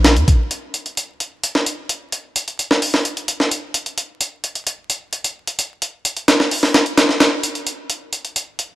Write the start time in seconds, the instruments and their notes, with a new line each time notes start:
Already playing: 808-style bass A#1
0.05 snare, closed hi-hat
0.17 808-style bass F2, closed hi-hat
0.28 kick, closed hi-hat
0.51 closed hi-hat
0.74 closed hi-hat
0.86 closed hi-hat
0.97 closed hi-hat
1.20 closed hi-hat
1.44 closed hi-hat
1.55 snare
1.66 closed hi-hat
1.89 closed hi-hat
2.12 closed hi-hat
2.36 closed hi-hat
2.48 closed hi-hat
2.59 closed hi-hat
2.71 snare
2.82 open hi-hat
2.94 snare
3.05 closed hi-hat
3.17 closed hi-hat
3.28 closed hi-hat
3.40 snare
3.51 closed hi-hat
3.74 closed hi-hat
3.86 closed hi-hat
3.98 closed hi-hat
4.21 closed hi-hat
4.44 closed hi-hat
4.55 closed hi-hat
4.67 closed hi-hat
4.90 closed hi-hat
5.13 closed hi-hat
5.24 closed hi-hat
5.47 closed hi-hat
5.59 closed hi-hat
5.82 closed hi-hat
6.05 closed hi-hat
6.16 closed hi-hat
6.28 snare, closed hi-hat
6.40 snare
6.51 open hi-hat
6.63 snare
6.74 snare, closed hi-hat
6.86 closed hi-hat
6.98 snare, closed hi-hat
7.09 snare
7.20 snare, closed hi-hat
7.43 closed hi-hat
7.55 closed hi-hat
7.67 closed hi-hat
7.90 closed hi-hat
8.13 closed hi-hat
8.25 closed hi-hat
8.36 closed hi-hat
8.59 closed hi-hat